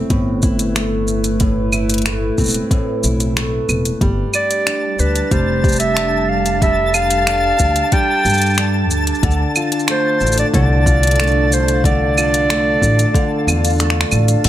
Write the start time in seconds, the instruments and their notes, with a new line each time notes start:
Already playing: steel-string acoustic guitar A3 C4 E4, ambient pad A3 C4 E4 G4 B4 D5 E5
0.10 upright bass G1, steel-string acoustic guitar A2, kick, closed hi-hat, shaker
0.42 steel-string acoustic guitar E4, kick, shaker
0.59 closed hi-hat, shaker
0.75 steel-string acoustic guitar A3, finger snap, closed hi-hat, shaker
1.08 shaker
1.24 closed hi-hat, shaker
1.40 steel-string acoustic guitar A2, kick, closed hi-hat, shaker
1.73 steel-string acoustic guitar E4, claves, shaker
1.90 closed hi-hat, shaker
1.94 closed hi-hat
1.98 closed hi-hat
2.02 finger snap, closed hi-hat
2.06 steel-string acoustic guitar A3, closed hi-hat, shaker
2.38 upright bass E1, steel-string acoustic guitar C4, kick, shaker
2.40 shaker
2.44 shaker
2.46 shaker
2.48 shaker
2.50 shaker
2.52 closed hi-hat, shaker
2.54 shaker
2.71 steel-string acoustic guitar A2, kick, closed hi-hat, shaker
3.03 upright bass B1, steel-string acoustic guitar E4, shaker
3.20 closed hi-hat, shaker
3.36 steel-string acoustic guitar A3, finger snap, closed hi-hat, shaker
3.69 upright bass E1, claves, shaker
3.85 closed hi-hat, shaker
4.01 upright bass G1, ambient pad G3, steel-string acoustic guitar G3, synth texture A5 A6, kick, closed hi-hat, shaker
4.10 ambient pad D4
4.34 steel-string acoustic guitar G4, clarinet D5, claves, shaker
4.51 ambient pad A4, closed hi-hat, shaker
4.67 steel-string acoustic guitar D4, finger snap, closed hi-hat, shaker
4.99 upright bass D2, steel-string acoustic guitar D4, clarinet B4, shaker
5.16 closed hi-hat, shaker
5.31 upright bass F1, steel-string acoustic guitar G3, clarinet C5, kick, closed hi-hat, shaker
5.64 steel-string acoustic guitar G4, kick, shaker
5.68 shaker
5.72 shaker
5.76 clarinet E5, shaker
5.80 closed hi-hat, shaker
5.97 steel-string acoustic guitar D4, finger snap, closed hi-hat, shaker
6.29 clarinet F5
6.46 closed hi-hat, shaker
6.62 steel-string acoustic guitar G3, clarinet E5, kick, closed hi-hat, shaker
6.94 steel-string acoustic guitar G4, clarinet F5, claves, shaker
7.11 closed hi-hat, shaker
7.27 steel-string acoustic guitar D4, finger snap, closed hi-hat, shaker
7.59 upright bass D2, steel-string acoustic guitar D4, kick, shaker
7.76 closed hi-hat, shaker
7.92 steel-string acoustic guitar G3, clarinet G5, kick, closed hi-hat, shaker
8.25 upright bass G2, steel-string acoustic guitar G4, shaker
8.29 shaker
8.34 shaker
8.37 shaker
8.42 closed hi-hat, shaker
8.46 shaker
8.50 shaker
8.54 finger snap, closed hi-hat, shaker
8.58 steel-string acoustic guitar D4, shaker
8.90 upright bass D2, shaker
9.07 closed hi-hat, shaker
9.15 shaker
9.23 upright bass D2, steel-string acoustic guitar D3, kick, closed hi-hat, shaker
9.31 shaker
9.41 ambient pad D5
9.56 steel-string acoustic guitar F4, claves, shaker
9.72 closed hi-hat
9.80 ambient pad F5, shaker
9.88 steel-string acoustic guitar A3, clarinet C5, finger snap, closed hi-hat, shaker
10.20 upright bass A1, steel-string acoustic guitar D4, shaker
10.27 shaker
10.32 shaker
10.38 clarinet D5, closed hi-hat, shaker
10.54 upright bass C2, steel-string acoustic guitar D3, clarinet D5, kick, closed hi-hat, shaker
10.86 steel-string acoustic guitar F4, kick, shaker
11.03 closed hi-hat, shaker
11.07 closed hi-hat
11.11 closed hi-hat
11.16 steel-string acoustic guitar A3, closed hi-hat
11.20 finger snap, closed hi-hat
11.24 closed hi-hat
11.28 closed hi-hat, shaker
11.32 closed hi-hat
11.52 clarinet C5, shaker
11.68 closed hi-hat, shaker
11.84 steel-string acoustic guitar D3, clarinet D5, kick, closed hi-hat, shaker
12.17 steel-string acoustic guitar F4, claves, shaker
12.34 closed hi-hat, shaker
12.49 steel-string acoustic guitar A3, finger snap, closed hi-hat, shaker
12.82 upright bass A1, steel-string acoustic guitar D4, kick, shaker
12.99 closed hi-hat, shaker
13.14 steel-string acoustic guitar D3, kick, closed hi-hat, shaker
13.47 upright bass E2, steel-string acoustic guitar F4, claves, shaker
13.65 closed hi-hat, shaker
13.67 shaker
13.70 shaker
13.75 shaker
13.78 steel-string acoustic guitar A3, finger snap, closed hi-hat, shaker
13.80 shaker
13.90 finger snap
14.01 finger snap
14.11 upright bass A1, claves, shaker
14.28 closed hi-hat, shaker
14.44 upright bass D2, steel-string acoustic guitar D3 A4, kick, closed hi-hat, crash, shaker